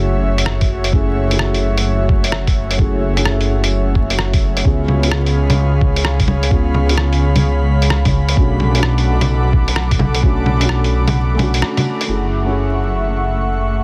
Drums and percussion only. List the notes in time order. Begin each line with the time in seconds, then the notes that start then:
0.38 closed hi-hat
0.46 cross-stick
0.61 kick, closed hi-hat
0.84 closed hi-hat
0.93 kick
1.31 closed hi-hat
1.39 cross-stick
1.54 closed hi-hat
1.78 closed hi-hat
2.09 kick
2.24 closed hi-hat
2.32 cross-stick
2.47 kick, closed hi-hat
2.71 closed hi-hat
2.79 kick
3.17 closed hi-hat
3.25 cross-stick
3.41 closed hi-hat
3.64 closed hi-hat
3.95 kick
4.10 closed hi-hat
4.19 cross-stick
4.34 kick, closed hi-hat
4.57 closed hi-hat
4.65 kick
4.88 low bongo
5.03 closed hi-hat
5.11 cross-stick
5.26 closed hi-hat
5.50 closed hi-hat, low bongo
5.81 kick
5.96 closed hi-hat
6.05 cross-stick
6.20 kick, closed hi-hat
6.28 low bongo
6.43 closed hi-hat
6.51 kick
6.74 low bongo
6.89 closed hi-hat
6.97 cross-stick
7.13 closed hi-hat
7.36 closed hi-hat, low bongo
7.82 closed hi-hat
7.90 cross-stick
8.05 kick, closed hi-hat, low bongo
8.29 closed hi-hat
8.37 kick
8.60 low bongo
8.75 closed hi-hat
8.83 cross-stick
8.98 closed hi-hat
9.21 closed hi-hat, low bongo
9.53 kick
9.68 closed hi-hat
9.76 cross-stick
9.91 kick, closed hi-hat
9.99 low bongo
10.14 closed hi-hat
10.23 kick
10.46 low bongo
10.61 closed hi-hat
10.69 cross-stick
10.84 closed hi-hat
11.08 closed hi-hat, low bongo
11.39 closed hi-hat, low bongo
11.54 closed hi-hat
11.62 cross-stick
11.77 closed hi-hat, low bongo
12.01 closed hi-hat